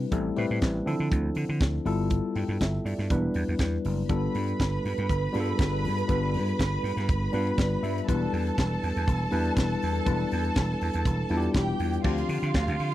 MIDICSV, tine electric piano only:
0, 0, Header, 1, 2, 480
1, 0, Start_track
1, 0, Tempo, 496689
1, 111, Time_signature, 4, 2, 24, 8
1, 12509, End_track
2, 0, Start_track
2, 0, Title_t, "Tine electric piano"
2, 0, Program_c, 0, 4
2, 0, Control_c, 0, 64, 127
2, 0, Note_on_c, 0, 55, 90
2, 0, Note_on_c, 0, 60, 84
2, 0, Note_on_c, 0, 62, 89
2, 0, Note_on_c, 0, 64, 73
2, 0, Note_on_c, 0, 71, 100
2, 110, Note_off_c, 0, 55, 0
2, 110, Note_on_c, 0, 55, 75
2, 113, Note_on_c, 0, 57, 75
2, 116, Note_off_c, 0, 60, 0
2, 116, Note_on_c, 0, 60, 68
2, 118, Note_off_c, 0, 64, 0
2, 118, Note_on_c, 0, 64, 73
2, 120, Note_on_c, 0, 69, 86
2, 122, Control_c, 0, 64, 0
2, 124, Note_off_c, 0, 62, 0
2, 127, Note_off_c, 0, 71, 0
2, 273, Control_c, 0, 64, 127
2, 310, Note_off_c, 0, 55, 0
2, 312, Note_off_c, 0, 57, 0
2, 313, Note_off_c, 0, 60, 0
2, 314, Note_off_c, 0, 64, 0
2, 315, Note_off_c, 0, 69, 0
2, 352, Note_on_c, 0, 55, 87
2, 357, Note_on_c, 0, 57, 79
2, 361, Note_on_c, 0, 60, 75
2, 364, Note_on_c, 0, 64, 76
2, 368, Note_on_c, 0, 71, 98
2, 819, Note_off_c, 0, 60, 0
2, 827, Note_off_c, 0, 64, 0
2, 829, Note_on_c, 0, 53, 93
2, 830, Note_on_c, 0, 60, 77
2, 834, Note_off_c, 0, 55, 0
2, 835, Note_on_c, 0, 62, 85
2, 836, Note_off_c, 0, 57, 0
2, 838, Note_on_c, 0, 64, 85
2, 841, Note_off_c, 0, 71, 0
2, 844, Note_on_c, 0, 69, 94
2, 845, Control_c, 0, 64, 0
2, 1029, Control_c, 0, 64, 127
2, 1622, Note_off_c, 0, 53, 0
2, 1623, Note_off_c, 0, 60, 0
2, 1625, Note_off_c, 0, 62, 0
2, 1627, Note_off_c, 0, 64, 0
2, 1630, Note_off_c, 0, 69, 0
2, 1792, Note_on_c, 0, 59, 79
2, 1793, Note_on_c, 0, 55, 96
2, 1797, Note_on_c, 0, 64, 86
2, 1801, Note_on_c, 0, 65, 85
2, 1807, Note_on_c, 0, 69, 104
2, 1810, Control_c, 0, 64, 0
2, 1975, Control_c, 0, 64, 127
2, 2193, Note_off_c, 0, 55, 0
2, 2193, Note_off_c, 0, 59, 0
2, 2195, Note_off_c, 0, 64, 0
2, 2197, Note_off_c, 0, 65, 0
2, 2200, Note_off_c, 0, 69, 0
2, 2280, Note_on_c, 0, 79, 64
2, 2507, Note_off_c, 0, 79, 0
2, 2521, Note_on_c, 0, 76, 63
2, 2748, Note_off_c, 0, 76, 0
2, 2760, Note_on_c, 0, 74, 69
2, 2995, Note_on_c, 0, 55, 90
2, 3002, Note_on_c, 0, 59, 77
2, 3005, Note_on_c, 0, 64, 76
2, 3007, Note_on_c, 0, 62, 83
2, 3011, Control_c, 0, 64, 0
2, 3012, Note_on_c, 0, 71, 98
2, 3181, Control_c, 0, 64, 127
2, 3216, Note_off_c, 0, 74, 0
2, 3788, Note_off_c, 0, 55, 0
2, 3791, Note_off_c, 0, 59, 0
2, 3793, Note_off_c, 0, 64, 0
2, 3794, Note_off_c, 0, 62, 0
2, 3796, Note_off_c, 0, 71, 0
2, 3955, Note_on_c, 0, 55, 75
2, 3957, Note_on_c, 0, 59, 75
2, 3958, Note_on_c, 0, 62, 68
2, 3965, Note_on_c, 0, 65, 68
2, 3967, Note_on_c, 0, 69, 88
2, 3974, Control_c, 0, 64, 0
2, 4135, Control_c, 0, 64, 127
2, 4749, Note_off_c, 0, 55, 0
2, 4750, Note_off_c, 0, 59, 0
2, 4750, Note_off_c, 0, 62, 0
2, 4754, Note_off_c, 0, 65, 0
2, 4755, Note_off_c, 0, 69, 0
2, 5148, Note_on_c, 0, 55, 92
2, 5151, Note_on_c, 0, 59, 74
2, 5159, Note_on_c, 0, 62, 76
2, 5161, Note_on_c, 0, 65, 81
2, 5164, Note_on_c, 0, 68, 74
2, 5220, Note_on_c, 0, 69, 91
2, 5225, Note_off_c, 0, 68, 0
2, 5753, Note_off_c, 0, 55, 0
2, 5754, Note_off_c, 0, 59, 0
2, 5758, Note_off_c, 0, 62, 0
2, 5759, Note_off_c, 0, 65, 0
2, 5788, Note_off_c, 0, 69, 0
2, 5875, Note_on_c, 0, 55, 79
2, 5880, Note_on_c, 0, 59, 62
2, 5882, Note_on_c, 0, 62, 72
2, 5886, Note_on_c, 0, 65, 64
2, 5889, Note_on_c, 0, 71, 88
2, 6670, Note_off_c, 0, 55, 0
2, 6672, Note_off_c, 0, 59, 0
2, 6673, Note_off_c, 0, 62, 0
2, 6676, Note_off_c, 0, 65, 0
2, 6677, Note_off_c, 0, 71, 0
2, 7078, Note_on_c, 0, 55, 87
2, 7082, Note_on_c, 0, 62, 79
2, 7083, Note_on_c, 0, 59, 76
2, 7089, Note_on_c, 0, 65, 74
2, 7092, Note_on_c, 0, 71, 95
2, 7327, Note_on_c, 0, 74, 66
2, 7550, Note_off_c, 0, 74, 0
2, 7567, Note_on_c, 0, 76, 74
2, 7678, Note_off_c, 0, 55, 0
2, 7680, Note_off_c, 0, 59, 0
2, 7680, Note_off_c, 0, 62, 0
2, 7683, Note_off_c, 0, 65, 0
2, 7685, Note_off_c, 0, 71, 0
2, 7790, Note_off_c, 0, 76, 0
2, 7805, Note_on_c, 0, 55, 83
2, 7805, Note_on_c, 0, 59, 67
2, 7812, Note_on_c, 0, 64, 72
2, 7813, Note_on_c, 0, 62, 64
2, 7821, Note_on_c, 0, 71, 88
2, 7822, Control_c, 0, 64, 0
2, 7984, Control_c, 0, 64, 127
2, 8594, Note_off_c, 0, 55, 0
2, 8594, Note_off_c, 0, 59, 0
2, 8598, Note_off_c, 0, 62, 0
2, 8598, Note_off_c, 0, 64, 0
2, 8603, Note_off_c, 0, 71, 0
2, 8996, Note_on_c, 0, 55, 88
2, 8999, Note_on_c, 0, 59, 74
2, 8999, Note_on_c, 0, 62, 85
2, 9005, Note_on_c, 0, 64, 84
2, 9010, Note_on_c, 0, 71, 103
2, 9595, Note_off_c, 0, 55, 0
2, 9597, Note_off_c, 0, 59, 0
2, 9597, Note_off_c, 0, 62, 0
2, 9600, Note_off_c, 0, 64, 0
2, 9602, Note_off_c, 0, 71, 0
2, 9717, Note_on_c, 0, 59, 65
2, 9718, Note_on_c, 0, 55, 78
2, 9721, Note_on_c, 0, 62, 76
2, 9727, Note_on_c, 0, 64, 75
2, 9729, Note_on_c, 0, 71, 86
2, 10507, Note_off_c, 0, 59, 0
2, 10508, Note_off_c, 0, 55, 0
2, 10510, Note_off_c, 0, 62, 0
2, 10512, Note_off_c, 0, 64, 0
2, 10513, Note_off_c, 0, 71, 0
2, 10919, Note_on_c, 0, 55, 92
2, 10921, Note_on_c, 0, 59, 73
2, 10926, Note_on_c, 0, 62, 82
2, 10926, Note_on_c, 0, 64, 86
2, 10931, Note_on_c, 0, 65, 73
2, 10987, Note_off_c, 0, 65, 0
2, 10990, Note_on_c, 0, 67, 106
2, 11512, Note_off_c, 0, 55, 0
2, 11513, Note_off_c, 0, 59, 0
2, 11516, Note_off_c, 0, 62, 0
2, 11516, Note_off_c, 0, 64, 0
2, 11548, Note_off_c, 0, 67, 0
2, 11634, Note_on_c, 0, 60, 73
2, 11635, Note_on_c, 0, 53, 72
2, 11639, Note_on_c, 0, 62, 66
2, 11643, Note_on_c, 0, 65, 71
2, 11647, Note_on_c, 0, 67, 83
2, 11651, Control_c, 0, 64, 0
2, 11810, Control_c, 0, 64, 127
2, 12420, Note_off_c, 0, 53, 0
2, 12420, Note_off_c, 0, 60, 0
2, 12423, Note_off_c, 0, 62, 0
2, 12424, Note_off_c, 0, 65, 0
2, 12426, Note_off_c, 0, 67, 0
2, 12509, End_track
0, 0, End_of_file